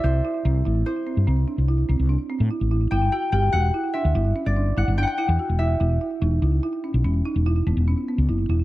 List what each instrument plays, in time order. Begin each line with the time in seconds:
Already playing: harp D5 E5
0.04 fretless electric bass C2, marimba E4, harp C5
0.25 marimba E4
0.45 fretless electric bass C2, marimba C4
0.65 fretless electric bass A1, marimba E4
0.86 marimba E4, harp C5
1.07 marimba C4
1.17 fretless electric bass G2
1.27 fretless electric bass C2, marimba C4
1.48 marimba D4
1.58 fretless electric bass C2
1.68 marimba E4
1.89 fretless electric bass C2, marimba C4
1.99 fretless electric bass C2
2.09 marimba D4
2.30 marimba C4
2.40 fretless electric bass A2
2.51 marimba E4
2.61 fretless electric bass A1
2.71 marimba E4
2.91 fretless electric bass G1, marimba E4, harp G5
3.12 marimba F#4, harp G5
3.32 fretless electric bass G1, marimba G4, harp G5
3.52 fretless electric bass E1, marimba F#4, harp F#5
3.74 marimba E4
3.94 marimba D4, harp E5
4.05 fretless electric bass D2
4.15 fretless electric bass G1, marimba E4
4.36 marimba C#4
4.46 fretless electric bass G1, harp D5
4.57 marimba D4
4.77 fretless electric bass G1, marimba E4, harp F#5
4.88 fretless electric bass G1
4.97 marimba D4, harp G5
5.03 harp F#5
5.07 harp G5
5.18 marimba E4, harp F#5
5.29 fretless electric bass E2
5.39 marimba F#4
5.50 fretless electric bass E1
5.59 marimba E4, harp E5
5.80 fretless electric bass E1, marimba E4
6.01 marimba E4
6.22 fretless electric bass E1, marimba D#4
6.42 fretless electric bass C#2, marimba E4
6.63 marimba E4
6.84 marimba C#4
6.94 fretless electric bass B1
7.04 fretless electric bass E1, marimba C#4
7.25 marimba D#4
7.36 fretless electric bass E1
7.46 marimba E4
7.67 fretless electric bass E1, marimba B3
7.77 fretless electric bass E1
7.88 marimba C#4
8.09 marimba B3
8.18 fretless electric bass C#2
8.29 fretless electric bass F#1, marimba E4
8.49 fretless electric bass E1, marimba E4